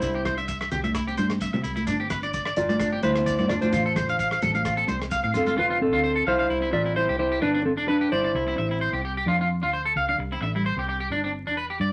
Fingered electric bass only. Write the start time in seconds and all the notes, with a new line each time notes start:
0.02 C2
0.72 C2
1.18 G2
1.54 C3
1.64 C2
1.87 G1
2.57 G1
3.04 D2
3.40 G2
3.50 G1
3.73 A1
4.42 A1
4.89 C2
5.24 A2
5.35 G1
5.58 F1
5.93 D2
6.26 B1
6.50 C2
6.73 A1
7.09 C2
7.43 G1
7.78 E1
8.12 G1
8.34 C2
8.58 A1
8.93 C2
9.26 F2
9.63 D2
9.96 C#2
10.18 C2
10.41 A1
10.76 C2
11.10 G1
11.46 E1
11.80 G2